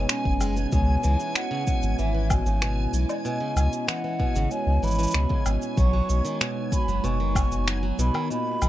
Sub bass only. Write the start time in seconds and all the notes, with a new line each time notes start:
0.25 F#1
0.73 C#2
1.04 C#2
1.83 G#1
1.99 G#1
2.46 G#1
2.93 B1
3.56 C#2
4.35 G#1
4.66 C#2
4.82 G#1
5.14 C#2
5.46 G#1
5.77 B1
6.09 B1
6.88 F#1
7.04 F#1
7.51 F#1
7.98 B1
8.62 B1